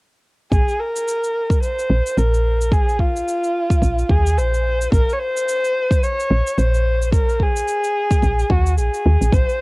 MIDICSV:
0, 0, Header, 1, 4, 480
1, 0, Start_track
1, 0, Key_signature, -5, "minor"
1, 0, Tempo, 550459
1, 453, Time_signature, 4, 2, 24, 8
1, 8383, End_track
2, 0, Start_track
2, 0, Title_t, "Kamancheh"
2, 0, Program_c, 0, 110
2, 452, Note_on_c, 0, 68, 84
2, 693, Note_on_c, 0, 70, 89
2, 706, Note_off_c, 0, 68, 0
2, 1413, Note_off_c, 0, 70, 0
2, 1420, Note_on_c, 0, 72, 90
2, 1900, Note_on_c, 0, 70, 83
2, 1914, Note_off_c, 0, 72, 0
2, 2377, Note_on_c, 0, 68, 89
2, 2390, Note_off_c, 0, 70, 0
2, 2616, Note_on_c, 0, 65, 90
2, 2629, Note_off_c, 0, 68, 0
2, 3580, Note_on_c, 0, 68, 89
2, 3593, Note_off_c, 0, 65, 0
2, 3816, Note_on_c, 0, 72, 92
2, 3829, Note_off_c, 0, 68, 0
2, 4295, Note_off_c, 0, 72, 0
2, 4299, Note_on_c, 0, 70, 97
2, 4472, Note_on_c, 0, 73, 73
2, 4485, Note_off_c, 0, 70, 0
2, 4532, Note_on_c, 0, 72, 105
2, 4545, Note_off_c, 0, 73, 0
2, 5259, Note_on_c, 0, 73, 100
2, 5272, Note_off_c, 0, 72, 0
2, 5735, Note_on_c, 0, 72, 95
2, 5748, Note_off_c, 0, 73, 0
2, 6215, Note_off_c, 0, 72, 0
2, 6222, Note_on_c, 0, 70, 97
2, 6469, Note_on_c, 0, 68, 103
2, 6482, Note_off_c, 0, 70, 0
2, 7419, Note_on_c, 0, 66, 83
2, 7433, Note_off_c, 0, 68, 0
2, 7657, Note_off_c, 0, 66, 0
2, 7665, Note_on_c, 0, 68, 85
2, 8136, Note_on_c, 0, 72, 89
2, 8149, Note_off_c, 0, 68, 0
2, 8383, Note_off_c, 0, 72, 0
2, 8383, End_track
3, 0, Start_track
3, 0, Title_t, "FM bass"
3, 0, Program_c, 1, 39
3, 450, Note_on_c, 1, 34, 91
3, 551, Note_off_c, 1, 34, 0
3, 1656, Note_on_c, 1, 34, 98
3, 1754, Note_off_c, 1, 34, 0
3, 1896, Note_on_c, 1, 34, 96
3, 2809, Note_off_c, 1, 34, 0
3, 3332, Note_on_c, 1, 34, 90
3, 3516, Note_off_c, 1, 34, 0
3, 3572, Note_on_c, 1, 39, 90
3, 3819, Note_on_c, 1, 34, 95
3, 3832, Note_off_c, 1, 39, 0
3, 4251, Note_off_c, 1, 34, 0
3, 4291, Note_on_c, 1, 34, 99
3, 4392, Note_off_c, 1, 34, 0
3, 5497, Note_on_c, 1, 34, 105
3, 5595, Note_off_c, 1, 34, 0
3, 5735, Note_on_c, 1, 34, 92
3, 6649, Note_off_c, 1, 34, 0
3, 7173, Note_on_c, 1, 34, 93
3, 7356, Note_off_c, 1, 34, 0
3, 7412, Note_on_c, 1, 39, 93
3, 7655, Note_on_c, 1, 34, 100
3, 7668, Note_off_c, 1, 39, 0
3, 7754, Note_off_c, 1, 34, 0
3, 7898, Note_on_c, 1, 39, 92
3, 7995, Note_off_c, 1, 39, 0
3, 8033, Note_on_c, 1, 34, 73
3, 8105, Note_off_c, 1, 34, 0
3, 8133, Note_on_c, 1, 34, 90
3, 8233, Note_off_c, 1, 34, 0
3, 8383, End_track
4, 0, Start_track
4, 0, Title_t, "Drums"
4, 450, Note_on_c, 9, 36, 97
4, 457, Note_on_c, 9, 69, 46
4, 537, Note_off_c, 9, 36, 0
4, 544, Note_off_c, 9, 69, 0
4, 595, Note_on_c, 9, 69, 28
4, 682, Note_off_c, 9, 69, 0
4, 838, Note_on_c, 9, 69, 61
4, 925, Note_off_c, 9, 69, 0
4, 942, Note_on_c, 9, 69, 50
4, 1030, Note_off_c, 9, 69, 0
4, 1080, Note_on_c, 9, 69, 30
4, 1167, Note_off_c, 9, 69, 0
4, 1309, Note_on_c, 9, 36, 88
4, 1318, Note_on_c, 9, 69, 54
4, 1396, Note_off_c, 9, 36, 0
4, 1406, Note_off_c, 9, 69, 0
4, 1420, Note_on_c, 9, 69, 49
4, 1507, Note_off_c, 9, 69, 0
4, 1561, Note_on_c, 9, 69, 31
4, 1648, Note_off_c, 9, 69, 0
4, 1801, Note_on_c, 9, 69, 61
4, 1888, Note_off_c, 9, 69, 0
4, 1901, Note_on_c, 9, 69, 48
4, 1988, Note_off_c, 9, 69, 0
4, 2042, Note_on_c, 9, 69, 27
4, 2129, Note_off_c, 9, 69, 0
4, 2279, Note_on_c, 9, 69, 57
4, 2366, Note_off_c, 9, 69, 0
4, 2370, Note_on_c, 9, 36, 108
4, 2381, Note_on_c, 9, 69, 46
4, 2457, Note_off_c, 9, 36, 0
4, 2468, Note_off_c, 9, 69, 0
4, 2521, Note_on_c, 9, 69, 30
4, 2608, Note_off_c, 9, 69, 0
4, 2610, Note_on_c, 9, 36, 55
4, 2697, Note_off_c, 9, 36, 0
4, 2758, Note_on_c, 9, 69, 64
4, 2846, Note_off_c, 9, 69, 0
4, 2863, Note_on_c, 9, 69, 53
4, 2950, Note_off_c, 9, 69, 0
4, 2999, Note_on_c, 9, 69, 29
4, 3086, Note_off_c, 9, 69, 0
4, 3229, Note_on_c, 9, 36, 95
4, 3237, Note_on_c, 9, 69, 59
4, 3316, Note_off_c, 9, 36, 0
4, 3324, Note_off_c, 9, 69, 0
4, 3330, Note_on_c, 9, 36, 53
4, 3339, Note_on_c, 9, 69, 49
4, 3417, Note_off_c, 9, 36, 0
4, 3427, Note_off_c, 9, 69, 0
4, 3477, Note_on_c, 9, 69, 32
4, 3564, Note_off_c, 9, 69, 0
4, 3570, Note_on_c, 9, 36, 89
4, 3657, Note_off_c, 9, 36, 0
4, 3720, Note_on_c, 9, 69, 62
4, 3807, Note_off_c, 9, 69, 0
4, 3823, Note_on_c, 9, 69, 49
4, 3910, Note_off_c, 9, 69, 0
4, 3960, Note_on_c, 9, 69, 30
4, 4047, Note_off_c, 9, 69, 0
4, 4199, Note_on_c, 9, 69, 61
4, 4286, Note_off_c, 9, 69, 0
4, 4291, Note_on_c, 9, 36, 100
4, 4304, Note_on_c, 9, 69, 50
4, 4378, Note_off_c, 9, 36, 0
4, 4391, Note_off_c, 9, 69, 0
4, 4442, Note_on_c, 9, 69, 30
4, 4530, Note_off_c, 9, 69, 0
4, 4682, Note_on_c, 9, 69, 66
4, 4769, Note_off_c, 9, 69, 0
4, 4784, Note_on_c, 9, 69, 55
4, 4871, Note_off_c, 9, 69, 0
4, 4923, Note_on_c, 9, 69, 31
4, 5010, Note_off_c, 9, 69, 0
4, 5151, Note_on_c, 9, 36, 101
4, 5160, Note_on_c, 9, 69, 55
4, 5238, Note_off_c, 9, 36, 0
4, 5247, Note_off_c, 9, 69, 0
4, 5262, Note_on_c, 9, 69, 50
4, 5349, Note_off_c, 9, 69, 0
4, 5404, Note_on_c, 9, 69, 32
4, 5491, Note_off_c, 9, 69, 0
4, 5641, Note_on_c, 9, 69, 60
4, 5728, Note_off_c, 9, 69, 0
4, 5740, Note_on_c, 9, 69, 50
4, 5827, Note_off_c, 9, 69, 0
4, 5878, Note_on_c, 9, 69, 30
4, 5966, Note_off_c, 9, 69, 0
4, 6121, Note_on_c, 9, 69, 59
4, 6208, Note_off_c, 9, 69, 0
4, 6212, Note_on_c, 9, 36, 101
4, 6220, Note_on_c, 9, 69, 50
4, 6299, Note_off_c, 9, 36, 0
4, 6307, Note_off_c, 9, 69, 0
4, 6359, Note_on_c, 9, 69, 31
4, 6446, Note_off_c, 9, 69, 0
4, 6452, Note_on_c, 9, 36, 55
4, 6539, Note_off_c, 9, 36, 0
4, 6595, Note_on_c, 9, 69, 67
4, 6683, Note_off_c, 9, 69, 0
4, 6696, Note_on_c, 9, 69, 53
4, 6784, Note_off_c, 9, 69, 0
4, 6835, Note_on_c, 9, 69, 31
4, 6923, Note_off_c, 9, 69, 0
4, 7070, Note_on_c, 9, 36, 99
4, 7073, Note_on_c, 9, 69, 63
4, 7157, Note_off_c, 9, 36, 0
4, 7160, Note_off_c, 9, 69, 0
4, 7171, Note_on_c, 9, 36, 52
4, 7176, Note_on_c, 9, 69, 52
4, 7258, Note_off_c, 9, 36, 0
4, 7263, Note_off_c, 9, 69, 0
4, 7318, Note_on_c, 9, 69, 32
4, 7405, Note_off_c, 9, 69, 0
4, 7411, Note_on_c, 9, 36, 94
4, 7499, Note_off_c, 9, 36, 0
4, 7555, Note_on_c, 9, 69, 60
4, 7642, Note_off_c, 9, 69, 0
4, 7656, Note_on_c, 9, 69, 46
4, 7744, Note_off_c, 9, 69, 0
4, 7795, Note_on_c, 9, 69, 28
4, 7883, Note_off_c, 9, 69, 0
4, 8039, Note_on_c, 9, 69, 59
4, 8126, Note_off_c, 9, 69, 0
4, 8131, Note_on_c, 9, 36, 106
4, 8139, Note_on_c, 9, 69, 47
4, 8218, Note_off_c, 9, 36, 0
4, 8226, Note_off_c, 9, 69, 0
4, 8277, Note_on_c, 9, 69, 30
4, 8364, Note_off_c, 9, 69, 0
4, 8383, End_track
0, 0, End_of_file